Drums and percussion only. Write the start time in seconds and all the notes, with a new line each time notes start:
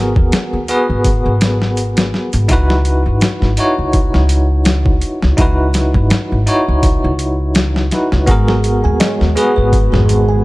0.16 kick
0.32 snare, closed hi-hat
0.68 closed hi-hat
1.04 kick, closed hi-hat
1.41 snare, closed hi-hat
1.62 snare
1.77 closed hi-hat
1.97 snare, closed hi-hat
2.14 snare
2.33 closed hi-hat
2.49 kick, closed hi-hat
2.70 snare
2.85 closed hi-hat
3.21 snare, closed hi-hat
3.42 snare
3.57 closed hi-hat
3.93 kick, closed hi-hat
4.14 snare
4.29 closed hi-hat
4.65 snare, closed hi-hat
4.86 kick
5.02 closed hi-hat
5.22 snare
5.38 kick, closed hi-hat
5.74 snare, closed hi-hat
5.94 kick
6.10 snare, closed hi-hat
6.47 closed hi-hat
6.83 kick, closed hi-hat
7.19 closed hi-hat
7.55 snare, closed hi-hat
7.76 snare
7.91 snare, closed hi-hat
8.12 snare
8.27 kick, closed hi-hat
8.48 snare
8.64 closed hi-hat
9.00 snare, closed hi-hat, tabla na
9.21 snare
9.37 closed hi-hat
9.73 kick, closed hi-hat
9.92 snare, tabla ge
10.09 closed hi-hat